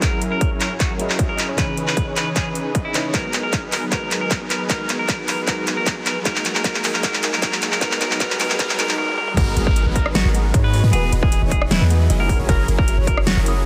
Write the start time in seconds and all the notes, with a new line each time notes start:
Already playing: riser
0.00 F#3 C#4 E4 G#4 A#4, kick, clap, closed hi-hat
0.04 A#4
0.21 F#3 C#4 E4 G#4 A#4, closed hi-hat
0.32 A#4
0.41 kick, closed hi-hat
0.51 F#3 C#4 E4 G#4 C#5
0.61 A#4, clap, closed hi-hat
0.80 F#4, kick, clap, closed hi-hat
0.90 F#3 C#4 E4 G#4 A#4
0.97 F#3 C#4 E4 G#4 D#5, closed hi-hat
1.10 clap
1.19 F#3 C#4 E4 G#4 D#5, kick, closed hi-hat
1.29 A#4
1.38 clap, closed hi-hat
1.49 F#3 C#4 E4 G#4 C#5
1.56 C#3 E3 C#4 D#4 G#4 B4 C#5, kick, clap, closed hi-hat
1.77 E3 C#4 D#4 G#4 B4, closed hi-hat
1.87 B4, clap
1.97 kick, closed hi-hat
2.07 E3 C#4 D#4 G#4 C#5
2.16 B4, clap, closed hi-hat
2.36 G#4, kick, clap, closed hi-hat
2.46 E3 C#4 D#4 G#4 B4
2.55 closed hi-hat
2.75 E3 C#4 D#4 G#4 D#5, kick, closed hi-hat
2.85 E4
2.93 C#3 C#4 D#4 E4 B4, clap, closed hi-hat
3.04 E3 C#4 D#4 G#4 C#5
3.12 F#3 G#3 B3 D#4 F#4 G#4 A#4 B4, kick, clap, closed hi-hat
3.33 F#3 B3 D#4 G#4 A#4, clap, closed hi-hat
3.43 A#4
3.53 kick, clap, closed hi-hat
3.63 F#3 B3 D#4 G#4 B4
3.72 A#4, clap, open hi-hat
3.90 F#3 G#3 B3 D#4 F#4 G#4 A#4, kick, clap, closed hi-hat
3.94 B4
4.11 F#3 B3 D#4 G#4 A#4, clap, closed hi-hat
4.21 A#4
4.31 kick, clap, closed hi-hat
4.41 F#3 B3 D#4 G#4 B4
4.50 A#4, clap, closed hi-hat
4.68 F#3 G#3 B3 D#4 F#4 G#4 A#4, kick, clap, closed hi-hat
4.72 B4
4.89 F#3 B3 D#4 G#4 A#4, clap, closed hi-hat
4.99 A#4
5.09 kick, clap, closed hi-hat
5.19 F#3 B3 D#4 G#4 B4
5.28 A#4, clap, open hi-hat
5.45 F#3 G#3 D#4 F#4 G#4 A#4, kick, clap, closed hi-hat
5.49 B4
5.67 F#3 B3 D#4 G#4 A#4, clap, closed hi-hat
5.77 A#4
5.86 kick, clap, closed hi-hat
5.97 F#3 B3 D#4 G#4 B4
6.06 A#4, clap, closed hi-hat
6.23 F#3 G#3 D#4 F#4 G#4 A#4, kick, clap, closed hi-hat
6.36 clap
6.45 F#3 A#3 D#4 G#4 A#4, clap, closed hi-hat
6.55 A#4, clap
6.62 G#3 D#4 F#4 G#4 A#4, kick, clap, closed hi-hat
6.74 clap
6.84 F#3 A#3 D#4 G#4 A#4, clap, open hi-hat
6.94 A#4, clap
7.01 F#3 G#3 A#3 D#4 F#4 A#4, kick, clap, closed hi-hat
7.13 clap
7.23 F#3 A#3 D#4 G#4 A#4, clap, closed hi-hat
7.33 A#4, clap
7.40 G#3 A#3 D#4 F#4 G#4 A#4, kick, clap, closed hi-hat
7.52 clap
7.62 F#3 A#3 D#4 G#4 A#4, clap, closed hi-hat
7.72 A#4, clap
7.79 G#3 D#4 F#4 A#4, kick, clap, closed hi-hat, noise sweep
7.83 B4
7.91 clap
7.99 F#3 G#3 B3 D#4 F#4 G#4 A#4 B4, clap, closed hi-hat
8.11 clap
8.18 F#3 G#3 B3 D#4 F#4 G#4 A#4 B4, kick, clap, closed hi-hat
8.30 clap
8.38 F#3 G#3 B3 D#4 F#4 G#4 A#4, clap, open hi-hat
8.42 B4
8.50 clap
8.57 F#3 G#3 B3 D#4 F#4 G#4 A#4, kick, clap, closed hi-hat
8.61 B4
8.69 clap
8.77 F#3 G#3 B3 D#4 F#4 G#4 A#4 B4, clap, closed hi-hat
8.89 clap
8.98 A#4, high tom
9.08 high tom
9.18 A#4, mid tom
9.28 mid tom
9.35 G#1 F#3 G#3 B3 D#4 F#4 G#4 A#4 A#5, kick, closed hi-hat, crash, downlifter
9.47 G#4
9.57 G#1 F#3 B3 D#4 G#4 A#4, closed hi-hat
9.67 A#4, kick
9.76 D#5, closed hi-hat
9.86 G#1 F#3 B3 D#4 G#4 B4
9.96 A#4, kick, closed hi-hat
10.06 G#4, cross-stick
10.15 F#4, snare, closed hi-hat
10.25 G#1 F#3 B3 D#4 G#4 A#4
10.33 G#3 B3 D#4 F#4 A#4 A#5, closed hi-hat
10.45 B4
10.54 G#2 F#3 B3 D#4 G#4 C#5 D#5, kick, closed hi-hat
10.64 B4
10.73 A#4, open hi-hat
10.84 G#2 F#3 B3 D#4 G#4 B4
10.91 E1 E3 B3 D#4 F#4 G#4 B4, closed hi-hat
11.03 B4
11.12 E1 E3 B3 D#4 G#4 B4 D#5, closed hi-hat
11.23 G#4, kick
11.32 G#5, closed hi-hat
11.42 E1 E3 B3 D#4 G#4 C#5 E5
11.51 G#4 D#5, kick, closed hi-hat
11.62 B4, cross-stick
11.71 E4 G#4, snare, closed hi-hat
11.81 E2 E3 B3 D#4 G#4 B4
11.89 E3 B3 D#4 F#4 G#4 D#5, closed hi-hat
12.01 E5
12.10 F#1 F#3 C#4 E4 G#4 D#5 G#5, closed hi-hat
12.19 E3 B3 D#4 F#4 G#4 A#4 E5
12.28 F#3 C#4 E4 G#4 A#4, kick, open hi-hat
12.39 F#1 F#3 C#4 E4 G#4 C#5
12.47 F#1 F#3 C#4 E4 F#4 G#4 A#4, kick, closed hi-hat
12.51 A#4
12.59 G#4
12.68 F#1 F#3 C#4 E4 G#4 A#4, closed hi-hat
12.78 A#4 C#5, kick
12.88 E5, closed hi-hat
12.98 F#1 F#3 C#4 E4 G#4 C#5
13.07 A#4, kick, closed hi-hat
13.17 G#4, cross-stick
13.27 F#4, snare, closed hi-hat
13.37 F#1 F#3 C#4 E4 G#4 A#4
13.44 F#3 C#4 E4 G#4 A#4 D#6, closed hi-hat
13.56 C#5